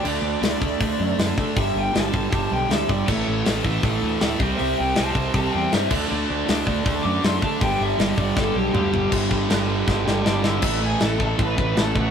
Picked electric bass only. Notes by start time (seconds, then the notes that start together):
0.05 D2
0.22 D2
0.42 D2
0.61 D2
0.81 D2
1.00 F#2
1.18 F#2
1.38 D3
1.57 G1
1.75 G1
1.95 G1
2.13 G1
2.32 G1
2.51 B1
2.69 D2
2.89 G1
3.08 A1
3.28 A1
3.47 A1
3.64 A1
3.83 A1
4.03 D2
4.22 D2
4.39 C2
4.60 C2
4.80 C2
4.99 C2
5.15 C2
5.34 C2
5.55 E2
5.74 G2
5.91 D2
6.12 D2
6.30 D2
6.49 D2
6.67 D2
6.86 D2
7.05 F#2
7.24 F#2
7.43 D3
7.61 G1
7.80 G1
7.98 G1
8.18 G1
8.37 G1
8.55 B1
8.74 D2
8.93 G1
9.12 G1
9.31 G1
9.50 G1
9.88 G1
10.07 G1
10.26 G1
10.62 A1
11.01 A1
11.39 A1
11.58 A1
11.77 A1
11.96 A1